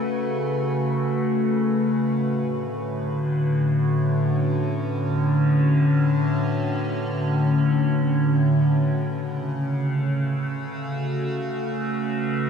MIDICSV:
0, 0, Header, 1, 2, 480
1, 0, Start_track
1, 0, Key_signature, 3, "major"
1, 0, Tempo, 500000
1, 11998, End_track
2, 0, Start_track
2, 0, Title_t, "Ambient pad"
2, 0, Program_c, 0, 92
2, 0, Note_on_c, 0, 49, 75
2, 0, Note_on_c, 0, 57, 75
2, 0, Note_on_c, 0, 66, 81
2, 0, Note_on_c, 0, 71, 78
2, 1981, Note_on_c, 0, 45, 80
2, 1990, Note_off_c, 0, 49, 0
2, 1993, Note_off_c, 0, 57, 0
2, 2238, Note_on_c, 0, 50, 82
2, 3241, Note_on_c, 0, 61, 62
2, 8270, Note_off_c, 0, 50, 0
2, 8273, Note_off_c, 0, 45, 0
2, 8277, Note_off_c, 0, 66, 0
2, 8280, Note_off_c, 0, 71, 0
2, 8290, Note_on_c, 0, 49, 77
2, 9036, Note_on_c, 0, 57, 85
2, 9560, Note_on_c, 0, 66, 56
2, 10245, Note_off_c, 0, 61, 0
2, 11107, Note_on_c, 0, 71, 63
2, 11998, Note_off_c, 0, 49, 0
2, 11998, Note_off_c, 0, 57, 0
2, 11998, Note_off_c, 0, 66, 0
2, 11998, Note_off_c, 0, 71, 0
2, 11998, End_track
0, 0, End_of_file